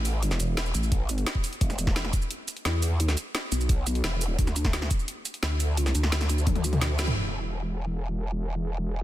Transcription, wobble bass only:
0.00 0.38 A1 loud
0.40 0.73 E1 loud
0.74 1.25 A1 loud
1.61 2.12 E1 loud
2.65 3.16 E2 loud
3.52 4.03 B1 loud
4.04 4.37 E1 loud
4.39 4.89 D2 loud
5.43 5.93 D2 medium
5.95 7.15 D2 loud
7.16 9.04 E1 medium

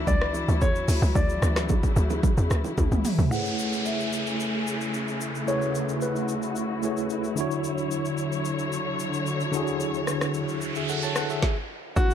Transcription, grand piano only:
0.07 0.58 D5 loud
0.62 1.17 C#5 loud
1.15 2.74 D5 medium
3.31 3.87 F#5 loud
3.85 5.52 E5 medium
5.48 6.04 C#5 loud
6.02 7.33 B4 medium
11.96 12.14 F#4 loud

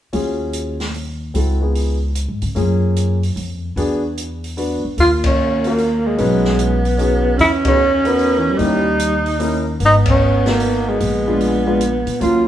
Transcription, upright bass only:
0.13 1.31 D#2 medium
1.35 2.25 C#2 medium
2.28 2.41 G#2 medium
2.42 2.55 C#3 medium
2.56 3.33 F#2 medium
3.36 3.74 F2 medium
3.76 4.79 E2 medium
4.84 muted upright bass stroke soft
4.98 6.15 D#2 medium
6.19 7.35 B1 medium
7.39 8.56 E2 medium
8.59 9.76 D#2 medium
9.80 10.96 G#1 medium
11.00 12.03 A#1 medium
12.06 12.20 A#2 medium
12.21 12.48 D#2 medium

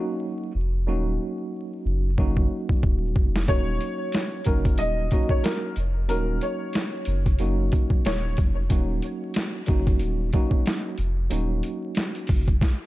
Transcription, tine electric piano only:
0.00 0.50 F#3 medium
0.00 0.51 A#3 medium
0.00 0.51 C#4 medium
0.00 0.51 D#4 medium
0.00 0.52 F#4 loud
0.87 2.09 F#3 medium
0.87 2.09 A#3 medium
0.87 2.09 C#4 medium
0.87 2.09 D#4 medium
0.87 2.10 F#4 loud
2.18 3.39 F#3 medium
2.18 3.40 A#3 medium
2.18 3.40 C#4 medium
2.18 3.40 D#4 medium
2.18 3.40 F#4 loud
3.48 4.39 F#3 medium
3.48 4.39 A#3 medium
3.48 4.40 C#4 medium
3.48 4.40 D#4 medium
3.48 4.40 F#4 loud
4.45 5.06 F#3 medium
4.45 5.07 A#3 medium
4.45 5.07 C#4 medium
4.45 5.07 D#4 medium
4.45 5.07 F#4 loud
5.12 5.72 F#3 medium
5.12 5.72 A#3 medium
5.12 5.73 C#4 medium
5.12 5.73 D#4 loud
5.12 5.73 F#4 loud
6.08 7.30 F#3 medium
6.08 7.31 A#3 medium
6.08 7.31 C#4 medium
6.08 7.31 D#4 medium
6.08 7.31 F#4 loud
7.40 8.61 F#3 medium
7.40 8.61 A#3 medium
7.40 8.62 C#4 medium
7.40 8.62 D#4 medium
7.40 8.62 F#4 loud
8.69 9.61 F#3 medium
8.69 9.61 A#3 medium
8.69 9.61 C#4 medium
8.69 9.62 D#4 medium
8.69 9.62 F#4 loud
9.67 10.28 F#3 medium
9.67 10.28 A#3 medium
9.67 10.29 C#4 medium
9.67 10.29 D#4 medium
9.67 10.29 F#4 medium
10.33 10.94 F#3 loud
10.33 10.94 A#3 medium
10.33 10.95 C#4 medium
10.33 10.95 D#4 medium
10.33 10.95 F#4 loud
11.30 12.52 F#3 medium
11.30 12.52 A#3 medium
11.30 12.53 C#4 medium
11.30 12.53 D#4 medium
11.30 12.53 F#4 loud

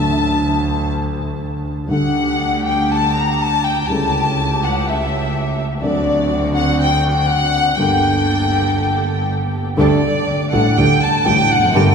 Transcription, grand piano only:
0.00 1.80 D2 medium
0.00 1.80 D3 medium
0.00 1.79 F#3 soft
0.00 1.80 A3 soft
0.00 1.81 D4 soft
0.00 1.81 A4 medium
1.88 3.78 D2 medium
1.88 3.78 D3 medium
1.88 3.77 G3 soft
1.88 3.77 A3 soft
1.88 3.78 D4 soft
1.88 3.79 A4 medium
3.88 5.74 C#2 medium
3.88 5.74 C#3 medium
3.88 5.73 G3 medium
3.88 5.74 C#4 soft
3.88 5.74 E4 soft
3.88 5.75 A4 medium
5.81 7.69 D2 medium
5.81 7.69 D3 medium
5.81 7.67 F#3 medium
5.81 7.68 C4 soft
5.81 7.69 D4 soft
5.85 7.70 A4 medium
7.77 9.69 G1 medium
7.77 9.69 G2 medium
7.77 9.68 G3 medium
7.77 9.69 A#3 soft
7.77 9.70 D4 soft
7.81 9.70 A4 medium
9.77 9.99 D2 medium
9.77 9.99 D3 medium
9.77 9.99 G3 medium
9.77 9.99 A3 medium
9.77 9.99 D4 medium
9.77 9.99 A4 medium
10.53 10.74 A1 medium
10.53 10.74 A2 medium
10.53 10.74 G3 soft
10.53 10.74 A3 soft
10.53 10.74 D4 soft
10.53 10.74 A4 medium
10.77 10.98 D2 medium
10.77 10.98 D3 medium
10.77 10.98 G3 soft
10.77 10.98 A3 soft
10.77 10.98 D4 soft
10.77 10.98 A4 medium
11.25 11.47 A1 medium
11.25 11.47 A2 medium
11.25 11.47 G3 soft
11.25 11.47 A3 soft
11.25 11.47 D4 soft
11.25 11.47 A4 medium
11.57 11.63 E2 medium
11.63 11.69 F2 medium
11.69 11.75 F#2 medium
11.75 11.95 G1 medium
11.75 11.95 G2 medium
11.75 11.95 G3 medium
11.75 11.95 A#3 medium
11.75 11.95 D4 medium
11.75 11.95 A4 medium

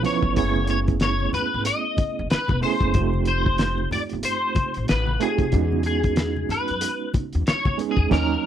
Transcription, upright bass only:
0.23 0.38 G1 medium
0.38 1.30 F#1 loud
1.35 muted upright bass stroke soft
1.54 1.65 G#1 medium
1.99 muted upright bass stroke soft
2.19 2.29 F#1 medium
2.33 muted upright bass stroke soft
2.50 2.61 E1 loud
2.82 2.96 F#1 loud
2.96 3.88 F1 loud
3.94 muted upright bass stroke soft
4.13 4.23 G1 medium
4.57 muted upright bass stroke medium
4.77 4.87 A1 medium
4.90 5.16 A1 loud
5.40 5.51 F1 medium
5.54 6.46 E2 loud
6.52 muted upright bass stroke soft
6.70 6.81 F#2 medium
7.15 muted upright bass stroke medium
7.35 7.45 E2 medium
7.48 muted upright bass stroke medium
7.66 7.77 D#2 loud
7.98 8.09 E2 medium
8.12 8.34 D#2 loud

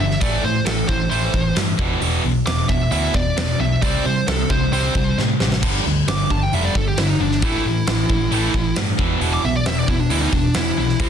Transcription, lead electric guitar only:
0.00 0.21 E5 medium
0.21 0.43 D5 medium
0.45 0.65 C5 medium
0.66 0.88 A4 loud
0.88 1.09 C5 medium
1.10 1.55 C5 loud
2.46 2.69 D6 loud
2.68 2.90 E5 medium
2.92 3.14 E5 medium
3.15 3.37 D5 loud
3.38 3.60 D5 medium
3.61 3.82 E5 medium
3.82 4.04 D5 loud
4.06 4.27 C5 medium
4.28 4.50 A4 medium
4.51 4.72 C5 medium
4.73 5.16 C5 loud
6.08 6.30 D6 loud
6.31 6.43 A5 medium
6.43 6.54 G5 medium
6.54 6.64 E5 medium
6.65 6.75 D5 medium
6.77 6.87 A4 loud
6.88 6.98 G4 medium
6.98 7.10 E4 medium
7.10 7.21 D#4 medium
7.21 7.42 D4 medium
7.44 8.74 E4 loud
9.33 9.44 D6 loud
9.45 9.55 E5 medium
9.56 9.67 D5 loud
9.67 9.79 E5 medium
9.79 9.89 D5 medium
9.89 10.00 E4 medium
10.00 10.10 D4 medium
10.11 10.22 E4 loud
10.22 10.33 D#4 loud
10.33 10.55 D4 loud
10.56 11.09 E4 loud

